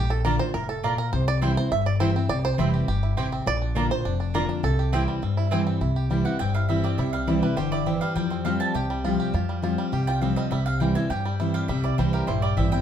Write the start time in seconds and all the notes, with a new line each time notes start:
Already playing: A#1 A#2 G4
0.10 A4
0.25 D3 A#3 D4 F4 A#4 D5 A#5
0.39 D4 F4 C5
0.54 F1 A2 A#4
0.69 A4
0.83 A#2 A#3 F4 D5 A#5
0.98 A#4
1.13 C2 C3 C5
1.28 D5
1.41 E3 G3 C4 E4 C5 G5
1.57 C4 E4 C5
1.71 G1 G2 E5
1.86 D5
2.00 E3 G3 C4 E4 C5 G5
2.15 C4 E4
2.29 C2 C3 D5
2.45 C5
2.58 F1 E3 G3 C4 E4 C5 G5
2.74 G4
2.88 G1 G2 G4
3.03 E4
3.17 A1 C3 C4 E4 G4 C5 G5
3.32 C4
3.46 A#1 A#2 D5
3.62 D4
3.75 D3 A#3 D4 F4 D5 A#5
3.90 D4 F4 C5
4.05 F1 F2 D4
4.20 D4
4.34 D3 A#3 D4 F4 A#4 D5 A#5
4.49 D4
4.63 C2 C3 A4
4.79 G4
4.92 E3 G3 C4 E4 G4 C5 G5
5.08 G3
5.22 G2 C4
5.37 E4
5.51 E3 G3 C4 E4 C5 G5
5.67 C4
5.81 C2 C3 E4
5.96 G4
6.10 E3 G3 C4 E4
6.25 C4 E4 G4 F#5
6.39 G1 G2 C4 G5
6.55 E4 F5
6.69 E3 G3 C4 E4 E5
6.84 C4 D5
6.98 C2 C3 E4 E5
7.13 G3 F5
7.27 E3 G3 C4 E4 D5
7.42 G3 C4 E4 B4
7.57 G1 D3 G4 C5
7.72 E4 D5
7.86 E3 C4 E5
8.01 G3 F5
8.15 F2 F3 G3 G5
8.30 C4 C5
8.44 F3 G3 C4 G4 F5
8.60 C4 A5
8.74 C2 C3 G4 G5
8.90 G3
9.04 F3 G3 C4 F4 G4
9.20 G4
9.33 F2 F3 F4
9.49 G3
9.62 F3 G3 C4 F4 G4
9.78 G3
9.92 C2 C3 G4
10.07 F4 G5
10.21 F3 G3 C4 G4 F5
10.36 G3 D#5
10.51 C2 C3 G3 E5
10.66 C4 F5
10.80 E3 G3 C4 E4 G5
10.95 C4 E4 G#5
11.10 G2 G4 G5
11.25 G3
11.40 E3 G3 C4 E4
11.54 G4 F5
11.68 C2 C3 G3 E5
11.84 E4 D5
11.98 C2 E3 G3 C4 E4 C5
12.13 G4 A#4
12.27 A#1 G2 E4 C5
12.42 G3 D5
12.57 A1 E3 G3 C4 E4 E5
12.72 C4 E4 G5